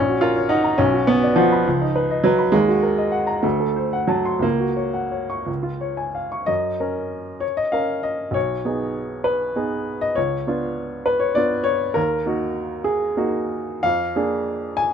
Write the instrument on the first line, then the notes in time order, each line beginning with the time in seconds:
upright piano
Already playing: A#1 C#4
0.09 F#4
0.21 F4 A#4
0.37 C#5
0.49 D#4 F#5
0.64 A#5
0.78 B1 C#4
0.93 F#4
1.07 B3 B4
1.23 D5
1.36 F3 F#5
1.52 B5
1.67 C#2
1.81 D#4
1.96 B4
2.11 D#5
2.24 F#3 B4
2.39 B5
2.52 D#2 G#3
2.68 F#4
2.83 A#4
2.98 D#5
3.12 F#5
3.27 A#5
3.43 D2 A3
3.60 A4
3.76 C5
3.93 F#5
4.07 F#3 A5
4.25 C6
4.39 C#2 A#3
4.60 F#4
4.76 C#5
4.94 F#5
5.11 C#5
5.30 C#6
5.46 C#2
5.63 F4
5.81 C#5
5.97 G#5
6.15 F5
6.32 C#6
6.46 F#2 D#5
6.80 C#4 A#4
7.40 C#5
7.57 D#5
7.72 C#4 A#4 F5
8.03 D#5
8.31 B1 C#5
8.65 B3 D#4 G#4
9.24 B4
9.56 B3 D#4 G#4
10.01 D#5
10.15 C#2 C#5
10.47 B3 D4 F4
11.06 B4
11.20 C#5
11.35 B3 D4 F4 D5
11.64 C#5
11.94 D#2 A#4
12.26 A#3 D#4 F#4
12.84 G#4
13.17 A#3 D#4 F#4
13.83 F2 F5
14.16 A#3 D4 G#4
14.77 G#5